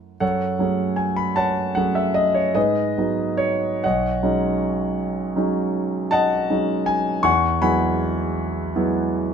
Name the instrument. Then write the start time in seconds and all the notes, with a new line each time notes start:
grand piano
Already playing: F#2 F#3 A3 E4 C#5
0.20 F#2 A4 C#5 F#5
0.59 F#3 A3 C#4 G#4
0.96 G#5
1.16 B5
1.36 C#5 F#5 A5
1.75 F#3 A3 C#4 G#4 F#5
1.95 E5
2.14 D#5
2.34 C#5
2.55 G#2 G#4 B4 D#5
2.98 F#3 G#3 B3 D#4
3.37 C#5
3.84 B1 C#5 D#5 F#5
4.23 F#3 G#3 C#4 D#4
5.36 F#3 G#3 C#4 D#4
6.11 D#5 F#5 A5
6.50 F#3 G#3 C#4 D#4
6.86 G#5
7.23 E2 F#5 G#5 C#6
7.62 F#3 G#3 B3 E4 F#5 G#5 B5
8.76 F#3 G#3 B3 E4